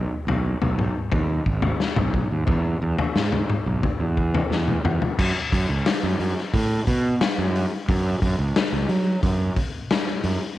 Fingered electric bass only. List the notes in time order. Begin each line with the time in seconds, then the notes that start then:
0.27 B1
0.62 B1
1.12 D#2
1.46 G#1
1.97 B1
2.31 D#2
2.48 E2
2.82 E2
3.16 G#2
3.66 B1
4.00 E2
4.50 E2
4.84 E2
5.19 F#2
5.52 F#2
5.69 C#2
6.03 F#2
6.20 F#2
6.54 A2
6.87 B2
7.38 F#2
7.89 F#2
8.22 F#2
8.39 C#2
8.72 C#2
8.89 F#3
9.23 F#2
10.24 F#2